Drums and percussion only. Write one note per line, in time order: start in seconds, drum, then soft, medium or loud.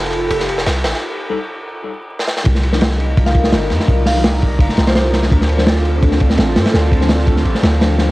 0.05 snare soft
0.13 ride medium
0.31 kick loud
0.31 ride medium
0.40 snare soft
0.49 kick medium
0.49 ride medium
0.58 snare medium
0.66 snare loud
0.66 ride medium
0.84 snare loud
0.84 ride medium
0.94 snare soft
2.19 snare medium
2.28 snare medium
2.37 snare medium
2.45 kick loud
2.45 ride medium
2.55 snare soft
2.63 ride medium
2.73 snare soft
2.81 snare loud
2.81 ride medium
2.91 snare soft
3.00 ride medium
3.17 kick loud
3.17 ride medium
3.26 snare soft
3.35 kick loud
3.35 ride medium
3.44 snare medium
3.53 snare loud
3.53 ride medium
3.70 snare soft
3.70 ride medium
3.80 snare soft
3.88 kick loud
3.88 ride medium
4.06 snare soft
4.06 open hi-hat medium
4.24 snare loud
4.24 ride medium
4.33 snare soft
4.42 kick medium
4.42 ride medium
4.52 ride soft
4.59 kick loud
4.59 ride loud
4.69 snare soft
4.77 snare loud
4.77 ride medium
4.87 snare loud
4.87 ride medium
4.95 snare loud
4.95 ride medium
5.13 snare medium
5.13 ride medium
5.23 snare soft
5.32 kick loud
5.32 ride medium
5.41 snare medium
5.49 ride medium
5.58 snare soft
5.67 snare loud
5.67 ride medium
5.76 snare soft
5.85 ride medium
6.03 kick loud
6.03 ride medium
6.12 snare soft
6.20 kick medium
6.20 ride medium
6.30 snare medium
6.38 snare loud
6.38 ride medium
6.56 snare loud
6.56 ride medium
6.65 snare loud
6.65 ride medium
6.74 snare loud
6.74 ride medium
6.92 kick medium
6.92 ride medium
7.01 snare soft
7.09 snare loud
7.09 ride medium
7.19 snare soft
7.27 kick loud
7.27 ride medium
7.37 snare soft
7.45 ride medium
7.55 snare soft
7.63 snare loud
7.63 ride medium
7.72 snare soft
7.81 snare loud
7.81 ride medium
7.98 snare medium
7.98 ride medium